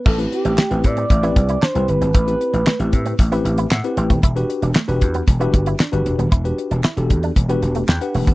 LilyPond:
<<
  \new Staff \with { instrumentName = "Analog synth lead" } { \time 4/4 \key a \dorian \tempo 4 = 115 a'8 g'4 d''4. c''8 b'8 | b'2 r2 | r1 | r1 | }
  \new Staff \with { instrumentName = "Tine electric piano" } { \time 4/4 \key a \dorian << { b'16 r2. r8. | r2. fis''8 g''8 | r1 | r2. g''4 | } \\ { r16 <c' e' g' b'>8. r16 <c' e' g' b'>8. r16 <c' e' g' b'>8. r16 <c' e' g' b'>8. | r16 <c' e' g' b'>8. r16 <c' e' g' b'>8. r16 <c' e' g' b'>8. r16 <c' e' g' b'>8. | r16 <d' fis' g' b'>8. r16 <d' fis' g' b'>8. r16 <d' fis' g' b'>8. r16 <d' fis' g' b'>8. | r16 <d' fis' g' b'>8. r16 <d' fis' g' a'>8. r16 <d' fis' g' b'>8. r16 <d' g' b' fis''>8. | } >> }
  \new Staff \with { instrumentName = "Clean electric guitar" } { \time 4/4 \key a \dorian a16 r8 c'16 a16 r8 c'16 r16 e'16 r16 e'16 d'16 r8 c'16 | a16 r8 c'16 a16 r8 c'16 r16 e'16 r16 e'16 r8 c'16 a16 | e'16 r8 d'16 a16 r8 b16 r16 e'16 r16 e'16 d'16 r8 b16 | e'16 r8 d'16 e'16 r8 d'16 r16 b16 r16 a16 r8 a16 b16 | }
  \new Staff \with { instrumentName = "Slap bass" } { \clef bass \time 4/4 \key a \dorian a,,8 r16 a,,16 r16 a,,16 a,8 a,,8 c,8 r16 c,16 g,,16 gis,,16 | a,,8 r16 a,,16 r16 a,,16 a,8 a,,8 a,,8 a,16 r16 a,,16 dis,,16 | e,,8 r16 e,,16 r16 e,,16 e,8 e,,8 g,,8 r16 g,,16 e,,16 dis,,16 | e,,8 r16 e,,16 r16 e,,16 e,8 e,,8 e,,8 e,16 r16 e,,16 gis,,16 | }
  \new DrumStaff \with { instrumentName = "Drums" } \drummode { \time 4/4 <cymc bd>16 hh16 hh16 hh16 <hc sn>16 hh16 <hh bd>16 hh16 <hh bd>16 hh16 <hh bd>16 hh16 <hc sn>16 hh16 hh16 hh16 | <hh bd>16 hh16 hh16 hh16 <hc sn>16 hh16 <hh bd>16 hh16 <hh bd>16 hh16 hh16 hh16 <hc sn>16 hh16 hh16 <hh bd>16 | <hh bd>16 hh16 hh16 hh16 <hc sn>16 hh16 <hh bd>16 hh16 <hh bd>16 hh16 <hh bd>16 hh16 <hc sn>16 hh16 hh16 hh16 | <hh bd>16 hh16 hh16 hh16 <hc sn>16 hh16 <hh bd>16 hh16 <hh bd>16 hh16 hh16 hh16 <hc sn>16 hh16 hho16 <hh bd>16 | }
>>